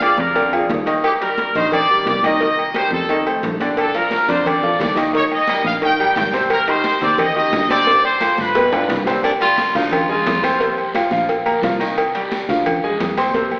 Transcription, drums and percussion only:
0.01 cowbell medium
0.01 high conga loud
0.01 low timbale medium
0.01 low agogo loud
0.18 high conga loud
0.35 cowbell loud
0.35 high conga soft
0.35 low agogo medium
0.52 high conga soft
0.52 low agogo loud
0.70 cowbell medium
0.70 high conga medium
0.70 low timbale medium
0.87 cowbell medium
0.87 low agogo medium
1.04 cowbell loud
1.04 low agogo loud
1.21 cowbell medium
1.21 high conga soft
1.21 low agogo medium
1.38 cowbell medium
1.38 high conga medium
1.38 low timbale medium
1.55 cowbell medium
1.55 high conga soft
1.72 cowbell loud
1.72 high conga soft
1.72 low conga medium
1.72 low agogo loud
1.90 high conga soft
2.06 cowbell medium
2.06 high conga medium
2.06 low timbale medium
2.06 low agogo medium
2.23 cowbell medium
2.23 high conga medium
2.23 low agogo loud
2.40 cowbell loud
2.40 high conga soft
2.58 high conga soft
2.58 low agogo medium
2.74 cowbell medium
2.74 high conga loud
2.74 low timbale medium
2.74 low agogo loud
2.91 high conga medium
3.08 cowbell loud
3.08 high conga soft
3.08 low agogo medium
3.26 high conga soft
3.26 low agogo loud
3.43 cowbell medium
3.43 high conga medium
3.43 low timbale medium
3.60 cowbell medium
3.60 high conga medium
3.60 low agogo medium
3.77 cowbell loud
3.77 high conga soft
3.77 low agogo loud
3.77 long guiro medium
3.94 cowbell medium
3.94 high conga soft
3.94 low agogo medium
4.11 cowbell medium
4.11 high conga loud
4.11 low timbale medium
4.11 short guiro medium
4.29 cowbell medium
4.29 high conga soft
4.29 short guiro medium
4.46 cowbell loud
4.46 high conga soft
4.46 low conga medium
4.46 low agogo loud
4.46 long guiro medium
4.63 high conga soft
4.63 low conga medium
4.80 cowbell medium
4.80 high conga medium
4.80 low timbale medium
4.80 low agogo medium
4.80 short guiro medium
4.97 cowbell medium
4.97 high conga medium
4.97 low agogo loud
4.97 short guiro medium
5.14 cowbell loud
5.14 high conga soft
5.14 long guiro medium
5.31 high conga soft
5.31 low agogo medium
5.47 cowbell medium
5.47 high conga loud
5.47 low timbale medium
5.47 low agogo loud
5.47 short guiro medium
5.64 high conga medium
5.64 short guiro medium
5.82 cowbell loud
5.82 high conga soft
5.82 low agogo medium
5.82 long guiro medium
5.99 high conga soft
5.99 low agogo loud
6.16 cowbell medium
6.16 high conga medium
6.16 low timbale medium
6.16 short guiro medium
6.33 cowbell medium
6.33 low agogo medium
6.33 short guiro medium
6.50 cowbell loud
6.50 high conga soft
6.50 low agogo loud
6.67 cowbell medium
6.67 high conga soft
6.67 low agogo medium
6.84 cowbell medium
6.84 high conga loud
6.84 low timbale medium
6.84 short guiro medium
7.01 cowbell medium
7.01 high conga soft
7.01 short guiro medium
7.18 cowbell loud
7.18 high conga soft
7.18 low conga medium
7.18 low agogo loud
7.18 long guiro medium
7.52 cowbell medium
7.52 high conga medium
7.52 low timbale medium
7.52 low agogo medium
7.52 short guiro medium
7.69 cowbell medium
7.69 high conga medium
7.69 low agogo loud
7.69 short guiro medium
7.87 cowbell loud
7.87 high conga soft
7.87 long guiro medium
8.04 high conga soft
8.04 low agogo medium
8.21 cowbell medium
8.21 high conga loud
8.21 low timbale medium
8.21 low agogo loud
8.21 short guiro medium
8.38 high conga medium
8.38 short guiro medium
8.55 cowbell loud
8.55 high bongo loud
8.55 high conga soft
8.55 low agogo medium
8.55 long guiro medium
8.73 low bongo loud
8.73 low agogo loud
8.89 cowbell medium
8.89 high conga medium
8.89 low timbale medium
8.89 short guiro medium
9.06 cowbell medium
9.06 low bongo medium
9.06 high conga medium
9.06 low agogo medium
9.06 short guiro medium
9.23 cowbell loud
9.23 high conga soft
9.23 low agogo loud
9.23 long guiro medium
9.40 cowbell medium
9.40 high conga soft
9.40 low agogo medium
9.58 cowbell medium
9.58 high conga loud
9.58 low timbale medium
9.58 short guiro medium
9.75 cowbell medium
9.75 high conga soft
9.75 short guiro medium
9.92 cowbell loud
9.92 high conga soft
9.92 low conga medium
9.92 low agogo loud
9.92 long guiro medium
10.09 high conga soft
10.09 low conga medium
10.26 cowbell medium
10.26 high conga medium
10.26 low timbale medium
10.26 low agogo medium
10.26 short guiro medium
10.43 cowbell medium
10.43 high conga medium
10.43 low agogo loud
10.43 short guiro medium
10.61 cowbell loud
10.61 high conga soft
10.61 long guiro medium
10.77 high conga soft
10.77 low agogo medium
10.95 cowbell medium
10.95 high conga medium
10.95 low timbale medium
10.95 low agogo loud
10.95 short guiro medium
11.11 high conga medium
11.11 short guiro medium
11.29 cowbell loud
11.29 high conga soft
11.29 low agogo medium
11.29 long guiro medium
11.46 high conga soft
11.46 low agogo loud
11.63 cowbell medium
11.63 high conga medium
11.63 low timbale medium
11.63 short guiro medium
11.81 cowbell medium
11.81 low agogo medium
11.81 short guiro medium
11.98 cowbell loud
11.98 high conga soft
11.98 low agogo loud
11.98 long guiro medium
12.15 cowbell medium
12.15 high conga soft
12.15 low agogo medium
12.31 cowbell medium
12.31 high conga loud
12.31 low timbale medium
12.31 short guiro medium
12.49 cowbell medium
12.49 high conga soft
12.49 short guiro medium
12.66 cowbell loud
12.66 high conga soft
12.66 low conga loud
12.66 low agogo loud
12.66 long guiro medium
13.00 cowbell medium
13.00 high conga medium
13.00 low timbale medium
13.00 low agogo medium
13.00 short guiro medium
13.17 cowbell medium
13.17 high conga medium
13.17 low agogo loud
13.17 short guiro medium
13.34 cowbell loud
13.34 high conga medium
13.34 long guiro medium
13.51 high conga loud
13.51 low agogo medium

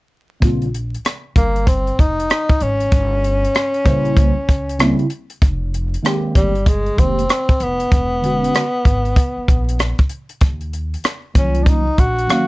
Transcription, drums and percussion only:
0.42 kick loud
0.42 closed hi-hat medium
0.62 closed hi-hat soft
0.74 closed hi-hat medium
0.94 closed hi-hat soft
1.05 cross-stick loud
1.05 closed hi-hat medium
1.36 kick medium
1.36 closed hi-hat medium
1.56 closed hi-hat soft
1.67 kick medium
1.67 closed hi-hat medium
1.87 closed hi-hat soft
1.99 kick medium
1.99 closed hi-hat medium
2.20 closed hi-hat medium
2.30 cross-stick loud
2.30 closed hi-hat medium
2.49 kick medium
2.49 closed hi-hat soft
2.60 closed hi-hat medium
2.80 closed hi-hat soft
2.92 kick loud
2.92 closed hi-hat medium
3.24 closed hi-hat medium
3.45 closed hi-hat soft
3.55 cross-stick loud
3.55 closed hi-hat medium
3.74 closed hi-hat soft
3.86 kick medium
3.86 closed hi-hat medium
4.05 closed hi-hat soft
4.17 kick medium
4.17 closed hi-hat medium
4.49 kick medium
4.49 closed hi-hat medium
4.69 closed hi-hat medium
4.79 cross-stick loud
4.79 closed hi-hat medium
4.99 closed hi-hat soft
5.10 closed hi-hat medium
5.30 closed hi-hat soft
5.42 kick loud
5.42 closed hi-hat medium
5.74 closed hi-hat medium
5.94 closed hi-hat soft
6.05 cross-stick loud
6.05 closed hi-hat medium
6.35 kick medium
6.35 closed hi-hat medium
6.55 closed hi-hat soft
6.66 kick medium
6.66 closed hi-hat loud
6.86 closed hi-hat soft
6.98 kick medium
6.98 closed hi-hat medium
7.19 closed hi-hat medium
7.29 cross-stick loud
7.29 closed hi-hat medium
7.49 kick medium
7.49 closed hi-hat soft
7.60 closed hi-hat medium
7.80 closed hi-hat soft
7.92 kick loud
7.92 closed hi-hat medium
8.24 closed hi-hat medium
8.44 closed hi-hat soft
8.55 cross-stick loud
8.55 closed hi-hat medium
8.85 kick medium
8.85 closed hi-hat medium
9.05 closed hi-hat soft
9.16 kick medium
9.16 closed hi-hat medium
9.48 kick medium
9.48 closed hi-hat medium
9.69 closed hi-hat medium
9.79 cross-stick loud
9.79 closed hi-hat medium
9.98 kick medium
9.98 closed hi-hat soft
10.09 closed hi-hat medium
10.29 closed hi-hat soft
10.41 kick loud
10.41 closed hi-hat medium
10.61 closed hi-hat soft
10.73 closed hi-hat medium
10.94 closed hi-hat soft
11.04 cross-stick loud
11.04 closed hi-hat medium
11.35 kick medium
11.35 closed hi-hat medium
11.55 closed hi-hat soft
11.66 kick loud
11.66 closed hi-hat medium
11.98 kick medium
11.98 closed hi-hat medium
12.19 closed hi-hat medium
12.29 cross-stick loud
12.29 closed hi-hat medium

